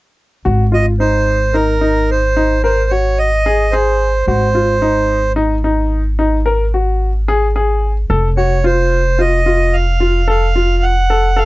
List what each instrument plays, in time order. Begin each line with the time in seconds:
0.45 upright bass G#1, grand piano F#4
0.72 grand piano F4, accordion D#5
1.00 grand piano D#4, accordion C5
1.54 grand piano D#4, accordion A#4
1.81 grand piano D#4
2.11 accordion C5
2.36 grand piano D#4
2.64 grand piano A#4, accordion C5
2.90 grand piano F#4, accordion C#5
3.19 accordion D#5
3.46 grand piano G#4
3.71 grand piano G#4, accordion C5
4.27 upright bass G#1, grand piano F#4, accordion C5
4.55 grand piano F4
4.82 grand piano D#4
5.36 grand piano D#4
5.64 grand piano D#4
6.19 grand piano D#4
6.46 grand piano A#4
6.74 grand piano F#4
7.28 grand piano G#4
7.56 grand piano G#4
8.10 upright bass F1, grand piano A4
8.37 grand piano F#4, accordion C#5
8.64 grand piano F4, accordion C5
9.19 grand piano F4, accordion D#5
9.46 grand piano F4
9.74 accordion F5
10.00 grand piano F4
10.28 grand piano A4, accordion F5
10.56 grand piano F4
10.83 accordion F#5
11.10 grand piano A4
11.36 grand piano A4, accordion F5